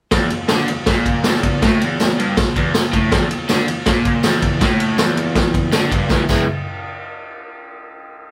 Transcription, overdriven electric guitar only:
0.12 E2
0.32 E2
0.50 D3
0.70 E2
0.88 A#2
1.26 E2
1.63 A2
1.82 E2
2.19 G2
2.38 E2
2.57 E2
2.75 E2
2.93 A2
3.12 E2
3.31 E2
3.50 D3
3.68 E2
3.87 A#2
4.23 E2
4.61 A2
4.98 E2
5.73 D3
5.91 G2
6.10 E3 G#3 B3 E4
6.30 E3 G#3 B3 E4

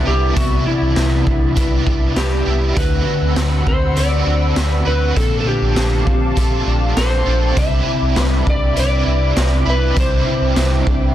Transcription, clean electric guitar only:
Already playing: C3 D4 B4
0.07 E4
0.37 C3
0.67 E4
0.96 B4
1.27 D4
1.57 B4
1.86 E4
2.16 B4
2.46 E4
2.77 D3
3.07 D4
3.67 C4
3.97 B4
4.26 D4
4.57 B4
4.87 D4
5.17 A#2
5.47 D4
5.77 G4
5.92 A4
6.07 C4
6.37 A4
6.67 D4
6.97 A4
7.26 D4
7.57 C3
7.86 E4
8.16 B4
8.46 D4
8.77 B4
9.07 E4
9.67 E4
9.97 C3
10.27 E4
10.87 D4

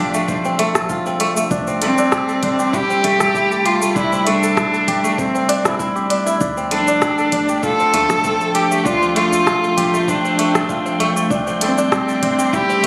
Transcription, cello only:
Already playing: D4
1.83 C4
2.75 G4
3.66 F4
3.96 E4
4.27 D4
5.19 C4
6.71 D4
7.63 A4
8.55 G4
8.85 F4
9.16 F4
10.09 D4
11.62 C4
12.55 G4

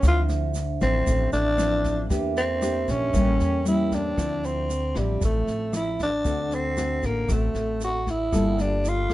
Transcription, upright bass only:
0.03 D2
0.81 A1
1.07 A1
1.33 A1
2.10 E2
2.88 A#1
3.14 A1
3.40 E2
4.18 D2
4.96 A1
5.22 A1
5.47 A1
6.25 D2
7.03 A1
7.29 A1
7.54 A1
8.33 G1
9.10 D2

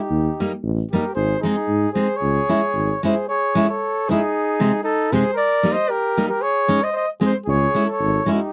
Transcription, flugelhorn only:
Already playing: G4
0.93 A#4
1.14 C5
1.41 G#4
1.94 C5
2.16 C#5
3.04 C5
3.28 C#5
3.68 C#5
4.10 G#4
4.84 A4
5.13 C5
5.37 D5
5.72 D#5
5.89 A#4
6.29 A#4
6.42 C#5
6.83 D#5
6.96 D#5
7.26 C5
7.49 C#5
7.92 C#5
8.32 G4

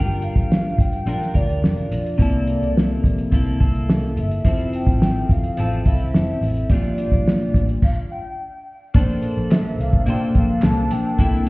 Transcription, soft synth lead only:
Already playing: G5
0.24 F5
0.80 G5
1.36 D5
1.92 D5
4.19 E5
4.75 G5
5.31 F5
5.86 E5
6.70 D5
7.27 D5
7.84 F5
8.12 G5
9.52 E5
9.80 F5
10.08 G5
10.37 F5
10.64 A5
10.92 G5

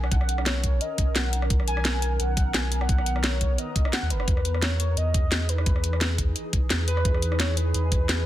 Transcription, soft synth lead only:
0.04 F#5
0.12 F#5
0.46 C#5
0.81 D#5
1.16 F#5
1.68 G#5
2.13 G#5
2.20 F#5
2.55 G#5
2.81 F#5
2.89 F#5
3.24 C#5
3.59 D#5
3.93 F#5
4.11 B4
4.63 C#5
4.97 D#5
5.49 B4
6.88 B4
7.40 C#5
7.57 B4

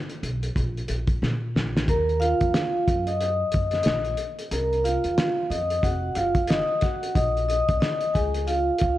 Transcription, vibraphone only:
1.89 A#4 A#5
2.20 F4 F5
3.07 D#5 D#6
3.72 D#5 D#6
4.52 A#4 A#5
4.84 F4 F5
5.50 D#5 D#6
5.83 F#4 F#5
6.16 F4 F5
6.49 D#5 D#6
6.82 F#4 F#5
7.16 D#5 D#6
7.49 D#5 D#6
7.75 D5
7.80 D#5 D#6
8.14 G#4 G#5
8.47 F4 F5
8.80 F4 F5

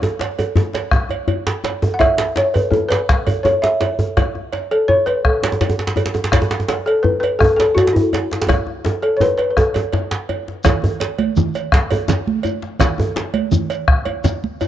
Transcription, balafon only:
1.94 F#5
1.99 E5
2.37 C#5
2.54 B4
2.71 A4
2.89 B4
3.43 C#5
3.62 E5
4.71 A4
4.88 C#5
5.06 B4
5.25 A4
6.86 A4
7.03 B4
7.20 B4
7.39 A4
7.56 A4
7.75 F#4
7.93 E4
9.02 A4
9.17 C#5
9.21 B4
9.38 B4
9.50 B4
9.58 A4

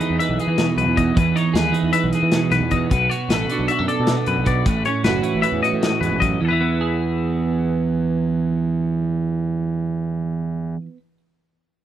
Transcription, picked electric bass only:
0.10 E2
0.30 B1
0.47 E3
0.77 B1
0.86 E2
1.17 E2
1.54 D#2
1.83 E2
2.04 B1
2.23 E3
2.51 B1
2.61 E2
2.92 B1
3.29 A1
3.59 B1
3.80 F#2
4.00 B2
4.27 F#2
4.38 B1
4.66 A1
5.04 F#1
5.35 A1
5.52 E2
5.74 A2
6.01 E2
6.11 A1
6.42 E2

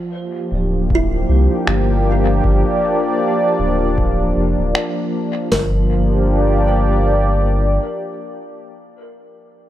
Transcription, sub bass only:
0.52 D1
1.29 C2
1.67 G1
2.44 G1
3.59 D1
4.37 F1
4.58 D1
5.52 G1

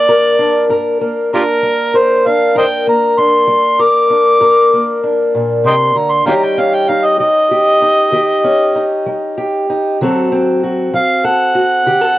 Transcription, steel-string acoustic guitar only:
Already playing: G3 A#3 D4
0.08 A#4
0.39 D4
0.69 G2 A#4
1.01 A#3
1.33 D4
1.63 G3
1.94 A#4
2.26 D4
2.55 G2 A#4
2.87 A#3
3.18 D4
3.48 G3
3.79 A#4
4.10 D4
4.40 G2 A#4
4.74 A#3
5.04 D4
5.35 A#2
5.64 C3
5.95 D3
6.26 D#3 G3 C#4 D#4 G4
6.58 C#4
6.89 D#4
7.20 G3
7.51 G4
7.82 D#4
8.12 D#3 G4
8.44 C#4
8.75 D#4
9.06 G3
9.38 G4
9.70 D#4
10.01 D3 F#3 C4 F#4 A4
10.32 C4
10.64 F#4
10.94 F#3
11.24 A4
11.55 F#4
11.86 D3 G4
12.01 A4

